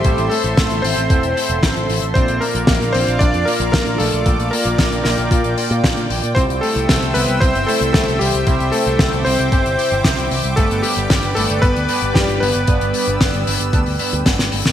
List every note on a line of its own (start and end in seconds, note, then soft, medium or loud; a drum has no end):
0.00 0.28 G3 medium
0.00 0.32 G4 loud
0.00 2.11 A4 medium
0.00 2.11 C5 medium
0.00 2.11 E5 medium
0.00 2.11 C6 medium
0.04 0.15 A1 loud
0.04 1.07 A2 loud
0.04 1.07 A3 medium
0.04 1.07 C4 medium
0.04 1.07 E4 medium
0.04 1.07 C5 loud
0.04 kick loud
0.04 closed hi-hat loud
0.18 0.28 A1 medium
0.18 closed hi-hat medium
0.30 0.80 A3 medium
0.30 0.85 A4 loud
0.30 open hi-hat loud
0.44 0.54 A1 medium
0.44 closed hi-hat medium
0.57 0.67 A1 loud
0.57 kick loud
0.57 snare loud
0.57 closed hi-hat loud
0.70 0.80 A1 medium
0.70 closed hi-hat medium
0.82 0.94 A1 medium
0.82 1.85 C4 medium
0.82 1.84 C5 loud
0.82 open hi-hat loud
0.97 1.07 A1 medium
0.97 closed hi-hat medium
1.10 1.20 E1 loud
1.10 1.33 A2 medium
1.10 1.33 A3 medium
1.10 1.33 C4 medium
1.10 1.33 E4 medium
1.10 1.33 C5 medium
1.10 kick loud
1.10 closed hi-hat loud
1.23 1.33 E1 medium
1.23 closed hi-hat medium
1.36 2.12 A2 medium
1.36 2.12 A3 medium
1.36 2.12 C4 medium
1.36 2.12 E4 medium
1.36 2.12 C5 medium
1.36 open hi-hat loud
1.49 1.60 E1 medium
1.49 closed hi-hat medium
1.63 1.73 A1 loud
1.63 kick loud
1.63 snare loud
1.63 closed hi-hat loud
1.76 1.86 A1 medium
1.76 closed hi-hat medium
1.89 1.99 A1 medium
1.89 open hi-hat loud
2.02 2.12 A1 medium
2.02 closed hi-hat medium
2.14 2.25 A#1 loud
2.14 3.44 A#2 medium
2.14 3.44 A#3 medium
2.14 2.40 C4 medium
2.14 3.44 D4 medium
2.14 6.32 F4 medium
2.14 3.44 F4 medium
2.14 2.42 C5 loud
2.14 6.32 D5 medium
2.14 3.44 D5 medium
2.14 4.24 F5 medium
2.14 6.32 D6 medium
2.14 kick loud
2.14 closed hi-hat loud
2.28 2.38 A#1 medium
2.28 closed hi-hat medium
2.41 2.91 A#3 medium
2.41 2.95 A#4 loud
2.41 open hi-hat medium
2.55 2.65 A#1 medium
2.55 closed hi-hat medium
2.67 2.78 A#1 loud
2.67 kick loud
2.67 snare loud
2.67 closed hi-hat loud
2.81 2.91 A#1 medium
2.81 closed hi-hat medium
2.93 3.04 A#1 medium
2.93 3.19 C4 medium
2.93 3.21 C5 loud
2.93 open hi-hat loud
3.07 3.17 A#1 medium
3.07 closed hi-hat medium
3.19 3.31 A#1 loud
3.19 3.45 D4 medium
3.19 3.47 D5 loud
3.19 kick loud
3.19 closed hi-hat medium
3.34 3.44 F2 medium
3.34 closed hi-hat medium
3.45 4.23 A#2 medium
3.45 4.23 A#3 medium
3.45 3.72 A#3 medium
3.45 4.23 D4 medium
3.45 4.23 F4 medium
3.45 3.70 A#4 medium
3.45 4.23 D5 loud
3.45 open hi-hat loud
3.60 3.70 A#1 medium
3.60 closed hi-hat medium
3.72 3.98 A#3 medium
3.72 4.00 A#4 loud
3.72 kick loud
3.72 snare loud
3.72 closed hi-hat medium
3.86 3.96 A#1 medium
3.86 closed hi-hat medium
3.98 4.09 A#1 medium
3.98 4.49 A3 medium
3.98 4.53 A4 loud
3.98 open hi-hat loud
4.12 4.23 A#1 medium
4.12 closed hi-hat medium
4.26 4.36 A#1 loud
4.26 5.28 A#2 loud
4.26 5.28 A#3 medium
4.26 5.28 D4 medium
4.26 5.28 F4 medium
4.26 5.28 D5 loud
4.26 14.72 G5 medium
4.26 kick loud
4.26 closed hi-hat loud
4.39 4.49 A#1 medium
4.39 closed hi-hat medium
4.51 5.02 A#3 medium
4.51 5.02 A#4 medium
4.51 open hi-hat loud
4.65 4.75 A#1 medium
4.65 closed hi-hat medium
4.78 4.88 A#1 loud
4.78 kick loud
4.78 snare loud
4.78 closed hi-hat medium
4.92 5.02 A#1 medium
4.92 closed hi-hat medium
5.04 5.15 A#1 medium
5.04 6.06 A#3 medium
5.04 6.05 A#4 medium
5.04 snare medium
5.04 open hi-hat loud
5.18 5.28 A#1 medium
5.18 closed hi-hat medium
5.31 5.41 A#2 medium
5.31 5.54 A#2 medium
5.31 5.54 A#3 medium
5.31 5.54 D4 medium
5.31 5.54 F4 medium
5.31 5.54 D5 medium
5.31 kick loud
5.31 closed hi-hat loud
5.44 5.54 A#1 medium
5.44 closed hi-hat medium
5.57 6.33 A#2 medium
5.57 6.33 A#3 medium
5.57 6.33 D4 medium
5.57 6.33 F4 medium
5.57 6.33 D5 medium
5.57 open hi-hat loud
5.71 5.81 A#2 medium
5.71 closed hi-hat medium
5.84 5.94 A#2 loud
5.84 kick loud
5.84 snare loud
5.84 closed hi-hat medium
5.97 6.07 A#2 medium
5.97 closed hi-hat medium
6.10 6.20 A#1 loud
6.10 open hi-hat loud
6.23 6.33 A#2 medium
6.23 closed hi-hat medium
6.35 6.46 C2 loud
6.35 7.65 C3 medium
6.35 7.65 G3 medium
6.35 7.65 C4 medium
6.35 6.43 C4 medium
6.35 7.65 E4 medium
6.35 6.41 C5 loud
6.35 10.53 C5 medium
6.35 7.65 C5 medium
6.35 10.53 E5 medium
6.35 8.45 E6 medium
6.35 kick loud
6.35 closed hi-hat medium
6.49 6.59 C2 medium
6.49 closed hi-hat medium
6.61 7.12 A3 medium
6.61 7.16 A4 loud
6.61 open hi-hat loud
6.76 6.86 C2 medium
6.76 closed hi-hat medium
6.89 6.99 C2 loud
6.89 kick loud
6.89 snare loud
6.89 closed hi-hat medium
7.02 7.12 C2 medium
7.02 closed hi-hat soft
7.14 7.25 C2 medium
7.14 7.40 B3 medium
7.14 7.39 B4 loud
7.14 open hi-hat loud
7.28 7.38 C2 medium
7.28 closed hi-hat soft
7.41 7.52 C2 loud
7.41 7.67 C4 medium
7.41 7.68 C5 loud
7.41 kick loud
7.41 closed hi-hat loud
7.55 7.65 G1 medium
7.55 closed hi-hat medium
7.66 8.44 C3 medium
7.66 8.44 G3 medium
7.66 7.93 A3 medium
7.66 8.44 C4 medium
7.66 8.44 E4 medium
7.66 7.91 A4 medium
7.66 8.44 C5 loud
7.66 open hi-hat loud
7.81 7.91 C2 medium
7.81 closed hi-hat medium
7.93 8.04 C2 loud
7.93 8.19 A3 medium
7.93 8.18 A4 loud
7.93 kick loud
7.93 snare loud
7.93 closed hi-hat medium
8.08 8.18 C2 medium
8.08 closed hi-hat medium
8.19 8.31 C2 medium
8.19 8.70 G3 medium
8.19 8.74 G4 loud
8.19 open hi-hat loud
8.34 8.44 C2 medium
8.34 closed hi-hat medium
8.47 8.57 C2 loud
8.47 9.49 C3 loud
8.47 9.49 G3 medium
8.47 9.49 C4 medium
8.47 9.49 E4 medium
8.47 9.49 C5 loud
8.47 12.64 D6 medium
8.47 kick loud
8.47 closed hi-hat medium
8.60 8.70 C2 medium
8.60 closed hi-hat medium
8.72 9.22 A3 medium
8.72 9.21 A4 medium
8.72 open hi-hat loud
8.87 8.96 C2 medium
8.87 closed hi-hat medium
8.99 9.10 C2 loud
8.99 kick loud
8.99 snare loud
8.99 closed hi-hat loud
9.13 9.23 C2 medium
9.13 closed hi-hat medium
9.25 9.36 C2 medium
9.25 10.28 C4 medium
9.25 10.26 C5 loud
9.25 open hi-hat loud
9.39 9.49 C2 medium
9.39 closed hi-hat medium
9.52 9.62 G1 loud
9.52 9.75 C3 medium
9.52 9.75 G3 medium
9.52 9.75 C4 medium
9.52 9.75 E4 medium
9.52 9.75 C5 medium
9.52 kick loud
9.52 closed hi-hat medium
9.65 9.75 G1 medium
9.65 closed hi-hat medium
9.78 10.54 C3 medium
9.78 10.54 G3 medium
9.78 10.54 C4 medium
9.78 10.54 E4 medium
9.78 10.54 C5 medium
9.78 open hi-hat loud
9.92 10.02 G1 medium
9.92 closed hi-hat medium
10.04 10.15 C2 loud
10.04 kick loud
10.04 snare loud
10.04 closed hi-hat medium
10.18 10.28 C2 medium
10.18 closed hi-hat medium
10.31 10.41 C2 medium
10.31 open hi-hat loud
10.44 10.54 C2 medium
10.44 closed hi-hat medium
10.56 10.67 G1 loud
10.56 11.86 G2 medium
10.56 11.86 G3 medium
10.56 10.82 A3 medium
10.56 11.86 B3 medium
10.56 11.86 D4 medium
10.56 10.84 A4 loud
10.56 14.72 B4 medium
10.56 11.86 B4 medium
10.56 14.72 D5 medium
10.56 kick loud
10.56 closed hi-hat loud
10.71 10.81 G1 medium
10.71 closed hi-hat medium
10.82 11.33 G3 medium
10.82 11.37 G4 loud
10.82 open hi-hat loud
10.97 11.07 G1 medium
10.97 closed hi-hat medium
11.10 11.20 G1 loud
11.10 kick loud
11.10 snare loud
11.10 closed hi-hat loud
11.23 11.33 G1 medium
11.23 closed hi-hat medium
11.35 11.46 G1 loud
11.35 11.61 A3 medium
11.35 11.63 A4 loud
11.35 open hi-hat loud
11.50 11.60 G1 medium
11.50 closed hi-hat medium
11.62 11.73 G1 loud
11.62 12.12 B3 medium
11.62 12.16 B4 loud
11.62 kick loud
11.62 closed hi-hat medium
11.76 11.86 D2 medium
11.76 closed hi-hat medium
11.89 12.65 G2 medium
11.89 12.65 G3 medium
11.89 12.65 B3 medium
11.89 12.65 D4 medium
11.89 12.65 B4 loud
11.89 open hi-hat loud
12.02 12.12 G1 medium
12.02 closed hi-hat medium
12.14 12.25 G1 loud
12.14 12.40 G3 medium
12.14 12.42 G4 loud
12.14 kick loud
12.14 snare loud
12.14 closed hi-hat medium
12.29 12.39 G1 medium
12.29 closed hi-hat medium
12.40 12.52 G1 loud
12.40 14.22 B3 medium
12.40 14.21 B4 loud
12.40 open hi-hat loud
12.55 12.65 G1 medium
12.55 closed hi-hat soft
12.67 12.78 G1 loud
12.67 13.70 G2 loud
12.67 13.70 G3 medium
12.67 13.70 B3 medium
12.67 13.70 D4 medium
12.67 13.70 B4 loud
12.67 14.72 E6 medium
12.67 kick loud
12.67 closed hi-hat loud
12.81 12.91 G1 medium
12.81 closed hi-hat medium
12.94 open hi-hat loud
13.08 13.17 G1 medium
13.08 closed hi-hat medium
13.20 13.31 G1 loud
13.20 kick loud
13.20 snare loud
13.20 closed hi-hat loud
13.34 13.44 G1 medium
13.34 closed hi-hat medium
13.47 13.57 G1 medium
13.47 open hi-hat loud
13.60 13.70 G1 medium
13.60 closed hi-hat medium
13.73 13.83 D2 loud
13.73 13.96 G2 medium
13.73 13.96 G3 medium
13.73 13.96 B3 medium
13.73 13.96 D4 medium
13.73 13.96 B4 medium
13.73 kick loud
13.73 closed hi-hat loud
13.86 13.97 D2 medium
13.86 open hi-hat medium
13.99 14.72 G2 medium
13.99 14.72 G3 medium
13.99 14.72 B3 medium
13.99 14.72 D4 medium
13.99 14.72 B4 medium
13.99 open hi-hat loud
14.13 14.23 D2 medium
14.13 closed hi-hat medium
14.26 14.36 G1 loud
14.26 kick loud
14.26 snare loud
14.26 closed hi-hat loud
14.39 14.49 G1 medium
14.39 snare medium
14.39 closed hi-hat medium
14.52 14.62 G1 medium
14.52 open hi-hat loud
14.65 14.72 G1 medium
14.65 snare medium
14.65 closed hi-hat medium